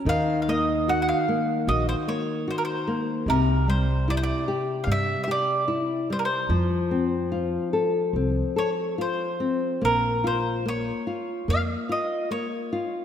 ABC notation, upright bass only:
X:1
M:4/4
L:1/8
Q:1/4=74
K:Bbm
V:1 name="Upright bass" clef=bass
E,,4 B,,, z3 | C,,4 =G,, z3 | F,,4 C,, z3 | B,,,4 F,, z3 |]